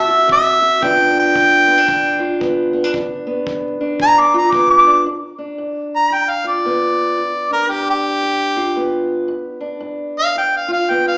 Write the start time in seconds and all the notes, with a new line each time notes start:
Already playing: D3 C4 E5
0.09 F#4
0.27 D3 C4, kick
0.32 E5
0.62 F#4
0.81 G2 D3 B3 D4 F4 G5, kick
1.13 B3
1.20 G5
1.35 G2, kick
1.67 B3
1.78 D4
1.86 G2, kick
2.20 F4
2.40 G2 B3, kick
2.73 B3
2.84 D4
2.94 G2 D4, kick
3.27 B3
3.47 G2, kick
3.81 D4
4.00 G2 A#5, kick
4.20 D6
4.34 F4
4.38 A#5
4.52 G2 B3 D6, kick
4.70 D6
4.86 D4
5.06 G2
5.38 D4
5.58 G2
5.96 A#5
6.11 G2 G5
6.30 F5
6.44 F4 D5
6.65 G2 B3
7.17 G2
7.51 D4 A#4
7.70 G2 G4
7.90 G4
8.23 G2
8.57 F4
8.75 G2 B3
9.28 G2
9.60 D4
9.80 G2
10.19 F5
10.35 G2 G5
10.56 F5
10.68 F4
10.73 F5
10.89 G2 B3 G5
11.08 F5